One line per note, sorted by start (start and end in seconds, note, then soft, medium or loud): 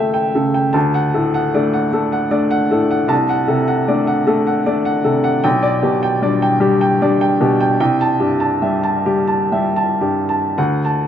0.00 0.71 C#2 soft
0.00 0.35 C#3 soft
0.00 0.78 A3 soft
0.00 0.35 A4 soft
0.00 0.78 E5 medium
0.00 0.14 G5 medium
0.00 0.73 A5 medium
0.14 0.47 G5 soft
0.35 0.75 C#3 soft
0.35 0.67 A4 soft
0.54 0.75 G5 soft
0.73 3.07 D2 medium
0.73 1.06 A5 medium
0.94 1.27 F#5 medium
1.14 1.79 A2 soft
1.14 1.47 A4 soft
1.34 1.67 F#5 soft
1.54 1.91 A3 soft
1.54 1.91 D4 soft
1.54 1.87 D5 soft
1.73 2.06 F#5 soft
1.93 2.30 A3 soft
1.93 2.25 A4 medium
2.12 2.44 F#5 medium
2.31 2.67 A3 soft
2.31 2.67 D4 soft
2.31 2.64 D5 medium
2.51 2.83 F#5 medium
2.71 3.11 A2 soft
2.71 3.03 A4 soft
2.91 3.11 F#5 medium
3.08 5.40 C2 medium
3.08 3.40 A5 medium
3.29 3.60 F#5 medium
3.48 4.12 C3 soft
3.48 3.80 A4 medium
3.68 4.00 F#5 medium
3.88 4.24 A3 soft
3.88 4.25 D4 soft
3.88 4.20 D5 soft
4.07 4.40 F#5 medium
4.27 4.65 A3 medium
4.27 4.59 A4 medium
4.47 4.79 F#5 soft
4.66 5.02 A3 soft
4.66 5.02 D4 soft
4.66 4.98 D5 medium
4.85 5.17 F#5 medium
5.04 5.44 C3 soft
5.04 5.36 A4 soft
5.24 5.44 F#5 medium
5.44 7.75 B1 medium
5.44 5.76 G5 medium
5.63 5.95 D5 medium
5.82 6.45 B2 soft
5.82 6.14 G4 soft
6.03 6.34 G5 medium
6.22 6.57 G3 soft
6.22 6.58 D4 soft
6.22 6.54 D5 medium
6.42 6.73 G5 medium
6.60 7.00 G3 soft
6.60 6.92 G4 medium
6.81 7.13 G5 medium
7.02 7.37 G3 soft
7.02 7.37 D4 medium
7.02 7.33 D5 medium
7.21 7.53 G5 medium
7.40 7.80 B2 medium
7.40 7.72 G4 medium
7.60 7.79 G5 medium
7.80 10.53 C2 medium
7.80 8.12 G5 medium
8.01 8.32 A5 medium
8.20 8.87 G2 soft
8.20 8.53 G4 soft
8.40 8.74 A5 medium
8.62 9.01 G3 soft
8.62 8.96 E5 soft
8.83 9.19 A5 medium
9.06 9.50 G3 soft
9.06 9.42 G4 soft
9.27 9.66 A5 soft
9.52 9.98 G3 soft
9.52 9.92 E5 soft
9.76 10.18 A5 soft
10.01 10.56 G2 soft
10.01 10.45 G4 soft
10.29 10.57 A5 soft
10.58 11.07 D2 medium
10.58 11.02 F#5 medium
10.85 11.07 A5 soft